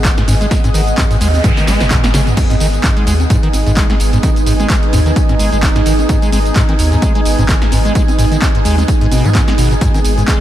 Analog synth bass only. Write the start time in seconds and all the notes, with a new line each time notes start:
Already playing: G#1
0.18 G#1
0.28 G#1
0.74 G#1
1.21 D#2
1.67 G#1
1.80 G#1
2.04 F#1
2.14 G#1
2.60 G#1
3.07 D#2
3.53 G#1
3.67 G#1
3.90 G#1
4.00 G#1
4.46 G#1
4.93 D#2
5.39 G#1
5.52 G#1
5.76 G#1
5.86 G#1
6.32 G#1
6.79 D#2
7.26 G#1
7.39 G#1
7.62 G#1
7.72 G#1
8.19 G#1
8.65 D#2
9.12 G#1
9.25 G#2
9.48 G#1
9.58 G#1
10.05 G#1